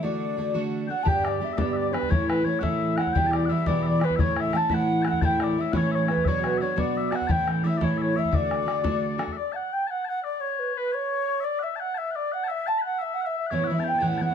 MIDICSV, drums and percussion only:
0, 0, Header, 1, 2, 480
1, 0, Start_track
1, 0, Tempo, 345821
1, 37, Time_signature, 6, 3, 24, 8
1, 19911, End_track
2, 0, Start_track
2, 0, Title_t, "Bodhran"
2, 1478, Note_on_c, 9, 64, 85
2, 1617, Note_off_c, 9, 64, 0
2, 1730, Note_on_c, 9, 64, 63
2, 1869, Note_off_c, 9, 64, 0
2, 2193, Note_on_c, 9, 64, 80
2, 2332, Note_off_c, 9, 64, 0
2, 2698, Note_on_c, 9, 64, 54
2, 2811, Note_off_c, 9, 64, 0
2, 2811, Note_on_c, 9, 64, 26
2, 2935, Note_off_c, 9, 64, 0
2, 2935, Note_on_c, 9, 64, 87
2, 3074, Note_off_c, 9, 64, 0
2, 3187, Note_on_c, 9, 64, 63
2, 3326, Note_off_c, 9, 64, 0
2, 3648, Note_on_c, 9, 64, 71
2, 3787, Note_off_c, 9, 64, 0
2, 4130, Note_on_c, 9, 64, 60
2, 4252, Note_off_c, 9, 64, 0
2, 4252, Note_on_c, 9, 64, 24
2, 4378, Note_off_c, 9, 64, 0
2, 4378, Note_on_c, 9, 64, 78
2, 4517, Note_off_c, 9, 64, 0
2, 4626, Note_on_c, 9, 64, 58
2, 4764, Note_off_c, 9, 64, 0
2, 5084, Note_on_c, 9, 64, 75
2, 5223, Note_off_c, 9, 64, 0
2, 5570, Note_on_c, 9, 64, 53
2, 5690, Note_off_c, 9, 64, 0
2, 5690, Note_on_c, 9, 64, 24
2, 5812, Note_off_c, 9, 64, 0
2, 5812, Note_on_c, 9, 64, 90
2, 5951, Note_off_c, 9, 64, 0
2, 6057, Note_on_c, 9, 64, 58
2, 6196, Note_off_c, 9, 64, 0
2, 6290, Note_on_c, 9, 64, 57
2, 6429, Note_off_c, 9, 64, 0
2, 6516, Note_on_c, 9, 64, 66
2, 6655, Note_off_c, 9, 64, 0
2, 7004, Note_on_c, 9, 64, 55
2, 7112, Note_off_c, 9, 64, 0
2, 7112, Note_on_c, 9, 64, 27
2, 7238, Note_off_c, 9, 64, 0
2, 7238, Note_on_c, 9, 64, 79
2, 7377, Note_off_c, 9, 64, 0
2, 7494, Note_on_c, 9, 64, 61
2, 7633, Note_off_c, 9, 64, 0
2, 7955, Note_on_c, 9, 64, 77
2, 8094, Note_off_c, 9, 64, 0
2, 8443, Note_on_c, 9, 64, 51
2, 8562, Note_off_c, 9, 64, 0
2, 8562, Note_on_c, 9, 64, 25
2, 8676, Note_off_c, 9, 64, 0
2, 8676, Note_on_c, 9, 64, 70
2, 8815, Note_off_c, 9, 64, 0
2, 8936, Note_on_c, 9, 64, 51
2, 9075, Note_off_c, 9, 64, 0
2, 9406, Note_on_c, 9, 64, 67
2, 9545, Note_off_c, 9, 64, 0
2, 9886, Note_on_c, 9, 64, 56
2, 10009, Note_off_c, 9, 64, 0
2, 10009, Note_on_c, 9, 64, 22
2, 10119, Note_off_c, 9, 64, 0
2, 10119, Note_on_c, 9, 64, 79
2, 10258, Note_off_c, 9, 64, 0
2, 10376, Note_on_c, 9, 64, 56
2, 10515, Note_off_c, 9, 64, 0
2, 10844, Note_on_c, 9, 64, 66
2, 10982, Note_off_c, 9, 64, 0
2, 11441, Note_on_c, 9, 64, 23
2, 11557, Note_off_c, 9, 64, 0
2, 11557, Note_on_c, 9, 64, 80
2, 11696, Note_off_c, 9, 64, 0
2, 11813, Note_on_c, 9, 64, 54
2, 11952, Note_off_c, 9, 64, 0
2, 12046, Note_on_c, 9, 64, 51
2, 12185, Note_off_c, 9, 64, 0
2, 12276, Note_on_c, 9, 64, 80
2, 12414, Note_off_c, 9, 64, 0
2, 12760, Note_on_c, 9, 64, 62
2, 12867, Note_off_c, 9, 64, 0
2, 12867, Note_on_c, 9, 64, 25
2, 13006, Note_off_c, 9, 64, 0
2, 19911, End_track
0, 0, End_of_file